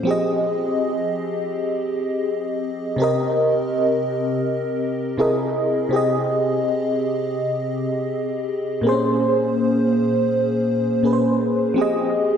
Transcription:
0.03 F3 C4 G4
0.09 G#4 D#5
2.96 C3 C4 G4
3.02 A#4 D#5
5.18 C3 C4 E4 G#4 A#4 D#5
5.89 C3 C4 G4
5.94 G#4 D#5
8.81 A#2 A#3 C4
8.87 G#4 C5
8.92 C#4
11.03 A#2 A#3 C#4 G#4 B4
11.13 C5
11.74 F3 C4 G4
11.80 G#4 D#5

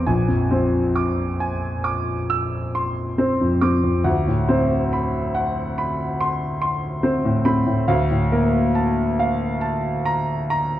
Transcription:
0.06 A#1 G#5
0.28 F2
0.51 C4 C5
0.96 D6
1.40 G#5
1.84 D6
2.30 E6
2.75 C6
3.18 C4 C5
3.41 F2
3.61 C4 D6
3.83 F2
4.04 D2 F#5
4.27 A2
4.49 C4 C5
4.93 B5
5.35 F#5
5.78 B5
6.21 C6
6.62 C6
7.03 C4 C5
7.25 A2
7.45 C4 B5
7.66 A2
7.88 D2 F5
8.11 A2
8.32 A#3 A#4
8.75 A5
9.19 F5
9.61 A5
10.05 A#5
10.50 A#5

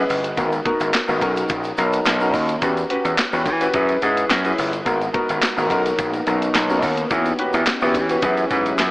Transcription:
Already playing: C#4 E4 G#4 B4 D#5
0.09 G1, open hi-hat, shaker
0.24 closed hi-hat, shaker
0.37 G#1 B3 D#4 F#4 A#4, kick, closed hi-hat, shaker
0.52 closed hi-hat, shaker
0.65 B3 D#4 F#4 A#4, kick, closed hi-hat
0.80 G#1, closed hi-hat, shaker
0.93 snare, clap, closed hi-hat, shaker
1.08 G#1 B3 D#4 F#4 A#4, shaker
1.21 B1 C#4 D#4 F#4 A#4, kick, closed hi-hat, shaker
1.36 closed hi-hat, shaker
1.49 A#1, kick, closed hi-hat, shaker
1.64 closed hi-hat, shaker
1.77 B1 C#4 D#4 F#4 A#4, closed hi-hat, shaker
1.92 closed hi-hat, shaker
2.05 B1, snare, clap, closed hi-hat, shaker
2.20 C#4 D#4 F#4 A#4, shaker
2.34 D#2, kick, open hi-hat, shaker
2.49 closed hi-hat, shaker
2.61 E2 C#4 F#4 G4 B4, kick, closed hi-hat, shaker
2.77 closed hi-hat, shaker
2.90 C#4 F#4 G4 B4, closed hi-hat
3.05 E2, closed hi-hat, shaker
3.18 snare, clap, closed hi-hat, shaker
3.32 E2 C#4 F#4 G4 B4, shaker
3.46 E3, kick, closed hi-hat, shaker
3.60 C#4 F#4 G4 B4, closed hi-hat, shaker
3.74 F#2 C#4 E4 G#4 B4, kick, closed hi-hat, shaker
3.89 closed hi-hat, shaker
4.02 G#2 C#4 E4 G#4 B4, closed hi-hat, shaker
4.17 closed hi-hat, shaker
4.30 F#2, snare, clap, closed hi-hat, shaker
4.45 C#4 E4 G#4 B4, closed hi-hat, shaker
4.58 G1, open hi-hat, shaker
4.73 closed hi-hat, shaker
4.86 G#1 G#3 B3 D#4 F#4 A#4 B4, kick, closed hi-hat, shaker
5.01 closed hi-hat, shaker
5.13 B3 D#4 F#4 A#4, kick, closed hi-hat
5.29 G#1, closed hi-hat, shaker
5.42 snare, clap, closed hi-hat, shaker
5.57 G#1 B3 D#4 F#4 A#4, shaker
5.70 B1 A#3 B3 C#4 D#4 F#4 A#4, kick, closed hi-hat, shaker
5.86 closed hi-hat, shaker
5.99 A#1, kick, closed hi-hat, shaker
6.14 closed hi-hat, shaker
6.26 B1 C#4 D#4 F#4 A#4, closed hi-hat, shaker
6.42 closed hi-hat, shaker
6.54 B1, snare, clap, closed hi-hat, shaker
6.69 C#4 D#4 F#4 A#4, shaker
6.83 D#2, kick, open hi-hat, shaker
6.97 closed hi-hat, shaker
7.10 E2 E3 C#4 F#4 G4 B4, kick, closed hi-hat, shaker
7.25 closed hi-hat, shaker
7.39 C#4 F#4 G4 B4, closed hi-hat
7.53 E2, closed hi-hat, shaker
7.66 snare, clap, closed hi-hat, shaker
7.81 E2 C#4 F#4 G4 B4, shaker
7.94 E3, kick, closed hi-hat, shaker
8.09 C#4 F#4 G4 B4, closed hi-hat, shaker
8.22 F#2 F#3 C#4 E4 G#4 B4, kick, closed hi-hat, shaker
8.37 closed hi-hat, shaker
8.50 G#2 C#4 E4 G#4 B4, kick, closed hi-hat, shaker
8.66 closed hi-hat, shaker
8.78 F#2, snare, clap, closed hi-hat, shaker

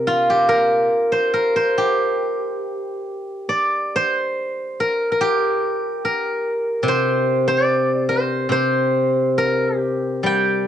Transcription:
Already playing: C3 A#4 C5 D5
0.07 F4
0.30 G4
0.49 A#4
1.12 C5
1.34 A#4
1.56 C5
1.78 G4
3.49 D5
3.96 C5
4.80 A#4
5.12 A#4
5.21 G4
6.05 A#4
6.83 C3
6.88 C5
7.48 C5
7.65 D5
8.09 C5
8.49 C3 C5
9.38 A#4
9.79 G4
10.23 G3 G5

